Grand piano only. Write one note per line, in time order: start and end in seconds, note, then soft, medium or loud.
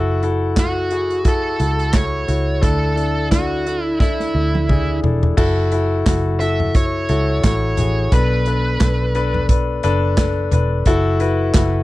0.00 0.18 E4 loud
0.00 0.18 F#4 loud
0.00 0.18 A4 loud
0.23 0.53 E4 medium
0.23 0.53 F#4 medium
0.23 0.53 A4 medium
0.57 0.87 E4 medium
0.57 0.87 F#4 medium
0.57 0.87 A4 medium
0.91 1.21 E4 medium
0.91 1.21 F#4 medium
0.91 1.22 G#4 medium
1.25 1.55 E4 medium
1.25 1.55 F#4 medium
1.25 1.55 A4 medium
1.59 1.90 E4 medium
1.59 1.90 F#4 soft
1.59 1.90 A4 medium
1.93 2.24 E4 medium
1.93 2.24 F#4 medium
1.93 2.24 A4 medium
2.28 2.59 E4 medium
2.28 2.58 F#4 medium
2.28 2.58 A4 medium
2.62 3.61 D3 medium
2.62 2.92 D4 medium
2.62 2.93 E4 medium
2.62 2.92 A4 medium
2.96 3.27 D4 medium
2.96 3.27 E4 medium
2.96 3.27 A4 medium
3.31 3.62 D4 medium
3.31 3.62 E4 medium
3.31 3.62 A4 medium
3.66 3.96 D4 medium
3.66 3.96 E4 medium
3.66 3.96 A4 medium
4.00 4.30 D4 medium
4.00 4.30 E4 medium
4.00 4.30 A4 medium
4.34 4.65 D4 medium
4.34 4.65 E4 medium
4.34 4.65 A4 medium
4.69 4.99 D4 medium
4.69 4.99 E4 medium
4.69 4.99 G#4 medium
5.03 5.33 D4 medium
5.03 5.33 E4 medium
5.03 5.34 A4 medium
5.37 5.68 E4 loud
5.37 5.68 F#4 medium
5.37 5.68 A4 loud
5.72 6.02 E4 medium
5.72 6.02 F#4 medium
5.72 6.02 A4 medium
6.07 6.37 E4 medium
6.07 6.37 F#4 medium
6.07 6.37 A4 medium
6.41 6.71 E4 medium
6.41 6.71 F#4 medium
6.41 6.71 A4 medium
6.75 7.05 E4 medium
6.75 7.05 F#4 medium
6.75 7.05 A4 medium
7.09 7.39 E4 medium
7.09 7.39 F#4 medium
7.09 7.39 A4 medium
7.44 7.74 E4 medium
7.44 7.74 F#4 medium
7.44 7.74 A4 medium
7.78 8.08 E4 medium
7.78 8.08 F#4 soft
7.78 8.08 G#4 medium
8.13 9.11 B2 medium
8.13 8.42 D4 medium
8.13 8.43 A4 medium
8.13 8.42 B4 loud
8.47 8.77 D4 medium
8.47 8.77 A4 medium
8.47 8.77 B4 medium
8.81 9.11 D4 medium
8.81 9.11 A4 medium
8.81 9.11 B4 medium
9.15 9.45 D4 medium
9.15 9.45 A4 medium
9.15 9.45 B4 loud
9.50 9.80 D4 medium
9.50 9.80 A4 medium
9.50 9.80 B4 medium
9.84 10.14 D4 loud
9.84 10.14 A4 medium
9.84 10.14 B4 loud
10.18 10.48 D4 medium
10.18 10.48 A4 medium
10.18 10.48 B4 medium
10.53 10.83 D4 medium
10.53 10.83 A4 medium
10.53 10.83 B4 medium
10.87 11.17 E4 loud
10.87 11.17 F#4 loud
10.87 11.17 A4 loud
11.20 11.51 E4 medium
11.20 11.51 F#4 medium
11.20 11.51 B4 medium
11.55 11.83 E4 medium
11.55 11.83 F#4 medium
11.55 11.83 A4 medium